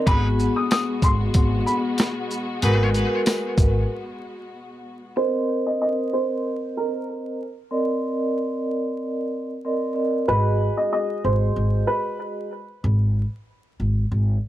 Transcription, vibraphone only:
0.06 2.27 G#3 medium
0.06 2.28 B3 loud
0.06 2.27 F#4 medium
0.06 2.27 G#4 medium
2.63 3.90 G#3 loud
2.63 3.90 F#4 loud
2.63 3.90 A#4 medium
2.63 3.91 B4 loud
5.16 7.37 C4 medium
5.16 7.38 A#4 medium
5.16 7.38 C5 medium
5.16 7.38 D#5 loud
7.71 9.49 C4 medium
7.71 9.50 A#4 medium
7.71 9.50 D5 medium
7.71 9.50 D#5 loud
9.65 9.93 C4 medium
9.65 9.94 A#4 medium
9.65 9.94 D5 medium
9.65 9.94 D#5 medium
9.94 10.25 C4 medium
9.94 10.25 A#4 medium
9.94 10.25 D5 medium
9.94 10.26 D#5 medium
10.27 12.48 G#3 medium
10.27 12.49 F#4 medium
10.27 12.49 G#4 medium
10.27 12.49 D#5 loud

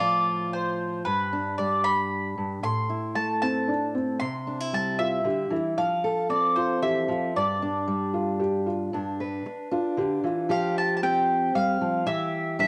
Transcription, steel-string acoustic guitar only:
0.00 1.03 A2 medium
0.00 1.06 F3 medium
0.00 1.06 F4 soft
1.06 2.36 G2 medium
1.33 2.64 D4 soft
1.59 2.61 G3 medium
2.38 2.62 G2 medium
2.63 4.17 A2 medium
2.90 4.18 E4 soft
3.15 4.18 A3 medium
4.21 5.24 C3 medium
4.47 4.60 D4 medium
4.60 5.78 E4 soft
4.73 5.75 G3 medium
5.24 5.50 D3 medium
5.50 5.77 E3 medium
5.78 7.07 F3 medium
6.04 7.32 A4 medium
6.29 7.32 C4 medium
6.82 7.09 E3 medium
7.08 7.35 F3 medium
7.36 8.92 G2 medium
7.62 8.93 D4 medium
7.88 8.89 G3 medium
8.93 9.45 G2 medium
8.93 9.70 D4 medium
9.20 10.47 B4 medium
9.46 muted steel-string acoustic guitar stroke medium
9.71 10.50 D4 medium
9.97 10.23 D3 medium
10.24 10.50 E3 medium
10.49 11.54 F3 medium
10.49 11.03 G4 medium
11.03 12.04 C4 medium
11.03 12.06 G4 medium
11.55 11.81 G3 medium
11.81 12.07 F3 medium
12.06 12.68 E3 medium
12.06 12.68 G4 medium
12.59 12.68 G3 medium
12.59 12.68 D4 medium

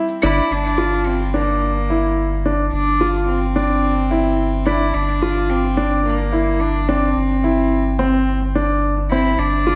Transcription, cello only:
0.23 0.54 E4 loud
0.52 1.08 D4 medium
1.06 1.37 C4 medium
1.35 2.45 A#3 medium
2.73 3.24 D4 medium
3.28 4.68 C4 medium
4.66 4.96 E4 medium
4.94 5.51 D4 medium
5.50 6.05 C4 medium
6.06 6.62 A#3 medium
6.60 6.90 D4 medium
6.88 8.27 C4 medium
9.11 9.40 E4 medium
9.39 9.75 D4 medium

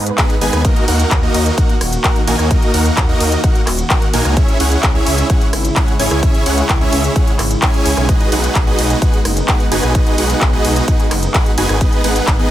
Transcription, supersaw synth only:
0.18 0.35 B3 medium
0.18 0.35 D#4 medium
0.18 0.35 G#4 medium
0.18 0.35 B4 medium
0.18 0.35 F#5 medium
0.41 0.62 B3 medium
0.41 0.62 D#4 medium
0.41 0.62 G#4 medium
0.41 0.62 B4 medium
0.41 0.62 G#5 loud
0.65 0.85 A#3 medium
0.65 0.85 D#4 medium
0.65 0.85 F#4 medium
0.65 0.85 A#4 medium
0.65 0.85 D#5 loud
0.88 1.20 A#3 medium
0.88 1.20 D#4 medium
0.88 1.20 F#4 medium
0.88 1.20 A#4 medium
0.88 1.20 F#5 medium
1.23 1.55 A#3 medium
1.23 1.55 D#4 medium
1.23 1.55 F#4 medium
1.23 1.55 A#4 medium
1.23 1.55 D#5 loud
1.58 1.74 A#3 medium
1.58 1.74 D#4 medium
1.58 1.74 F#4 medium
1.58 1.74 A#4 medium
1.58 1.74 F#5 medium
2.04 2.21 A#3 medium
2.04 2.21 D#4 medium
2.04 2.21 F#4 medium
2.04 2.21 A#4 medium
2.04 2.21 F#5 medium
2.27 2.48 A#3 loud
2.27 2.48 D#4 medium
2.27 2.48 F#4 medium
2.27 2.48 A#4 medium
2.27 2.48 G#5 loud
2.51 2.71 A#3 medium
2.51 2.71 F#4 medium
2.74 3.06 A#3 medium
2.74 3.06 D#4 medium
2.74 3.06 F#4 medium
2.74 3.06 A#4 medium
2.74 3.06 F#5 medium
3.09 3.41 A#3 medium
3.09 3.41 D#4 medium
3.09 3.41 F#4 medium
3.09 3.41 A#4 medium
3.09 3.41 D#5 medium
3.44 3.60 A#3 medium
3.44 3.60 D#4 medium
3.44 3.60 F#4 medium
3.44 3.60 A#4 medium
3.44 3.60 F#5 medium
3.90 4.07 A#3 medium
3.90 4.07 D#4 medium
3.90 4.07 F#4 medium
3.90 4.07 A#4 medium
3.90 4.07 F#5 medium
4.13 4.34 A#3 medium
4.13 4.34 D#4 medium
4.13 4.34 F#4 medium
4.13 4.34 A#4 medium
4.13 4.34 G#5 loud
4.37 4.57 C#4 loud
4.37 4.57 E4 medium
4.37 4.57 C#5 medium
4.37 4.57 E5 loud
4.60 4.92 C#4 medium
4.60 4.92 E4 medium
4.60 4.92 G#4 medium
4.60 4.92 C#5 medium
4.60 4.92 F#5 medium
4.95 5.27 C#4 medium
4.95 5.27 E4 medium
4.95 5.27 G#4 medium
4.95 5.27 C#5 medium
4.95 5.27 E5 medium
5.30 5.46 C#4 medium
5.30 5.46 E4 medium
5.30 5.46 C#5 medium
5.30 5.46 F#5 medium
5.76 5.93 C#4 medium
5.76 5.93 E4 medium
5.76 5.93 G#4 medium
5.76 5.93 C#5 medium
5.76 5.93 F#5 medium
6.00 6.20 C#4 medium
6.00 6.20 E4 medium
6.00 6.20 G#4 medium
6.00 6.20 C#5 medium
6.00 6.20 G#5 loud
6.23 6.43 C#4 loud
6.23 6.43 E4 medium
6.23 6.43 G#4 medium
6.23 6.43 C#5 medium
6.23 6.43 E5 loud
6.46 6.78 C#4 medium
6.46 6.78 E4 medium
6.46 6.78 G#4 medium
6.46 6.78 C#5 medium
6.46 6.78 F#5 medium
6.81 7.13 C#4 medium
6.81 7.13 E4 medium
6.81 7.13 G#4 medium
6.81 7.13 C#5 medium
6.81 7.13 E5 loud
7.16 7.32 C#4 medium
7.16 7.32 E4 medium
7.16 7.32 G#4 medium
7.16 7.32 F#5 medium
7.62 8.06 C#4 loud
7.62 8.06 E4 medium
7.62 8.06 G#4 medium
7.62 8.06 C#5 loud
7.62 8.06 G#5 loud
8.09 8.29 D#4 loud
8.09 8.29 F#4 medium
8.09 8.29 G#4 medium
8.09 8.29 B4 medium
8.09 8.29 D#5 loud
8.32 8.64 D#4 medium
8.32 8.64 F#4 medium
8.32 8.64 G#4 medium
8.32 8.64 B4 medium
8.32 8.64 F#5 medium
8.67 8.99 D#4 medium
8.67 8.99 F#4 medium
8.67 8.99 G#4 medium
8.67 8.99 B4 medium
8.67 8.99 D#5 loud
9.02 9.18 G#4 medium
9.02 9.18 B4 medium
9.48 9.65 D#4 medium
9.48 9.65 F#4 medium
9.48 9.65 G#4 medium
9.48 9.65 B4 medium
9.48 9.65 F#5 medium
9.72 9.92 D#4 medium
9.72 9.92 F#4 medium
9.72 9.92 G#4 medium
9.72 9.92 B4 medium
9.72 9.92 G#5 loud
9.95 10.15 D#4 medium
9.95 10.15 F#4 medium
9.95 10.15 G#4 medium
9.95 10.15 B4 medium
9.95 10.15 D#5 loud
10.18 10.50 D#4 medium
10.18 10.50 F#4 medium
10.18 10.50 G#4 medium
10.18 10.50 B4 medium
10.18 10.50 F#5 medium
10.53 10.85 D#4 medium
10.53 10.85 F#4 medium
10.53 10.85 G#4 medium
10.53 10.85 B4 medium
10.53 10.85 D#5 loud
10.88 11.04 B4 medium
11.34 11.51 D#4 medium
11.34 11.51 F#4 medium
11.34 11.51 G#4 medium
11.34 11.51 B4 medium
11.34 11.51 F#5 medium
11.58 11.78 D#4 medium
11.58 11.78 F#4 medium
11.58 11.78 G#4 medium
11.58 11.78 B4 medium
11.58 11.78 G#5 loud
11.81 12.01 B3 loud
11.81 12.01 D#4 medium
12.04 12.36 B3 medium
12.04 12.36 D#4 medium
12.04 12.36 G#4 medium
12.04 12.36 B4 medium
12.04 12.36 F#5 medium
12.39 12.51 B3 medium
12.39 12.51 D#4 medium
12.39 12.51 G#4 medium
12.39 12.51 B4 medium
12.39 12.51 D#5 loud

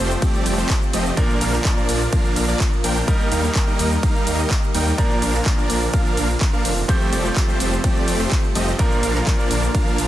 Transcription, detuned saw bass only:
0.00 0.16 F1 medium
0.46 0.64 F1 medium
0.94 1.12 F1 medium
1.41 1.59 A#1 loud
1.89 2.07 A#1 medium
2.36 2.54 A#1 medium
2.84 3.02 A#1 medium
3.32 3.50 D#2 loud
3.79 3.97 D#2 loud
4.27 4.45 D#2 medium
4.75 4.92 D#2 medium
5.22 5.40 A#1 loud
5.70 5.88 A#1 loud
6.17 6.35 A#1 medium
6.65 6.83 F1 medium
7.13 7.31 F1 loud
7.60 7.78 F1 loud
8.08 8.26 F1 medium
8.56 8.73 F1 medium
9.03 9.21 A#1 loud
9.51 9.69 A#1 medium
9.98 10.08 A#1 medium

